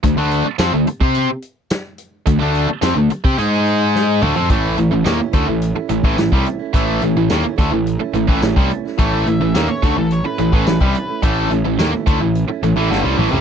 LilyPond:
<<
  \new Staff \with { instrumentName = "Lead electric guitar" } { \time 4/4 \key d \major \tempo 4 = 107 r1 | r1 | r1 | r1 |
cis''16 e''4 cis''8 a'16 cis''16 b'4.~ b'16 | a'8 r2. r8 | }
  \new Staff \with { instrumentName = "Steel-string acoustic guitar" } { \time 4/4 \key d \major r1 | r1 | <a, e a cis' e'>8 <e a cis' e'>8 <a, e a cis' e'>8 <e a cis' e'>16 <a cis' e'>8 <a cis' e'>16 <e a cis' e'>16 <a cis' e'>16 <a, e a cis' e'>8. <a cis' e'>16 | <a, e a cis' e'>8 <e a cis' e'>8 <a, e a cis' e'>8 <e a cis' e'>16 <a cis' e'>8 <a cis' e'>16 <e a cis' e'>16 <a cis' e'>16 <a, e a cis' e'>8. <a cis' e'>16 |
<a, e a cis' e'>8 <e a cis' e'>8 <a, e a cis' e'>8 <e a cis'>16 <a cis' e'>8 <a cis' e'>16 <e a cis' e'>16 <a cis' e'>16 <a, e a cis' e'>8. <a cis' e'>16 | <a, e a cis' e'>8 <e a cis' e'>8 <a, e a cis' e'>8 <e cis' e'>16 <a cis' e'>8 <a cis' e'>16 <e a cis' e'>16 <a cis' e'>16 <a, e a cis' e'>8. <a cis' e'>16 | }
  \new Staff \with { instrumentName = "Distorted electric guitar" } { \clef bass \time 4/4 \key d \major <d a>16 <d a d'>8 r16 <f c'>16 <d a>16 r16 <c' g' c''>8 r4. r16 | <d a>16 <d a d'>8 r16 <f c'>16 <d a>16 r16 <c' g'>16 <gis dis' gis'>4. <d a>16 <f c'>16 | <a, e a>8 <a, e>16 <a, e>16 <dis bes>16 r16 <d a>16 <a, e>8 r16 <a, e>16 <a, e>16 <a, e>16 <c g>16 r8 | <a, e a>8 <a, e>16 <a, e>16 <dis bes>16 r16 <d a>16 <a, e>8 r16 <a, e>16 <a, e>16 <a, e>16 <c g>16 r8 |
<a, e a>8 <a, e>16 <a, e>16 <dis bes>16 r16 <d a>16 <a, e>8 r16 <a, e>16 <a, e>16 <a, e>16 <c g>16 r8 | <a, e a>8 <a, e>16 <a, e>16 <dis bes>16 r16 <d a>16 <a, e>8 r16 <a, e>16 <a, e>16 <g, d>16 <c g>16 <a, e>16 <c g>16 | }
  \new Staff \with { instrumentName = "Overdriven electric guitar" } { \clef bass \time 4/4 \key d \major <d a>16 <d a d'>8 r16 <f c'>16 <d a>16 r16 <c' g' c''>8 r4. r16 | <d a>16 <d a d'>8 r16 <f c'>16 <d a>16 r16 <c' g'>16 <gis dis' gis'>4. <d a>16 <f c'>16 | <a, e a>8 <a, e>16 <a, e>16 <dis bes>16 r16 <d a>16 <a, e>8 r16 <a, e>16 <a, e>16 <a, e>16 <c g>16 r8 | <a, e a>8 <a, e>16 <a, e>16 <dis bes>16 r16 <d a>16 <a, e>8 r16 <a, e>16 <a, e>16 <a, e>16 <c g>16 r8 |
<a, e a>8 <a, e>16 <a, e>16 <dis bes>16 r16 <d a>16 <a, e>8 r16 <a, e>16 <a, e>16 <a, e>16 <c g>16 r8 | <a, e a>8 <a, e>16 <a, e>16 <dis bes>16 r16 <d a>16 <a, e>8 r16 <a, e>16 <a, e>16 <g, d>16 <c g>16 <a, e>16 <c g>16 | }
  \new Staff \with { instrumentName = "Picked electric bass" } { \clef bass \time 4/4 \key d \major d,16 d,8 r16 f,16 d,16 r16 c8 r4. r16 | d,16 d,8 r16 f,16 d,16 r16 c16 gis,4. d,16 f,16 | a,,8 a,,16 a,,16 dis,16 r16 d,16 a,,8 r16 a,,16 a,,16 a,,16 c,16 r8 | a,,8 a,,16 a,,16 dis,16 r16 d,16 a,,8 r16 a,,16 a,,16 a,,16 c,16 r8 |
a,,8 a,,16 a,,16 dis,16 r16 d,16 a,,8 r16 a,,16 a,,16 a,,16 c,16 r8 | a,,8 a,,16 a,,16 dis,16 r16 d,16 a,,8 r16 a,,16 a,,16 g,,16 c,16 a,,16 c,16 | }
  \new DrumStaff \with { instrumentName = "Drums" } \drummode { \time 4/4 <hh bd>8 hh8 <hh sn tamb>8 hh16 bd16 hh8 hh8 <hh sn tamb>8 hh8 | <hh bd>8 hh8 <hh sn tamb>8 hh16 bd16 hh8 hh8 sn8 toml16 tomfh16 | <hh bd>8 hh8 <hh sn tamb>8 <hh bd>8 hh8 hh16 bd16 <hh sn tamb>16 bd16 hh8 | <hh bd>8 hh8 <hh sn tamb>8 <hh bd sn>8 hh8 hh16 bd16 <hh sn tamb>16 bd16 hh16 sn16 |
<hh bd>8 hh8 <hh sn tamb>8 <hh bd sn>8 hh8 hh16 bd16 <hh sn tamb>16 bd16 hh8 | <hh bd>8 hh8 <hh sn tamb>8 <hh bd>8 hh8 hh8 sn8 toml16 tomfh16 | }
>>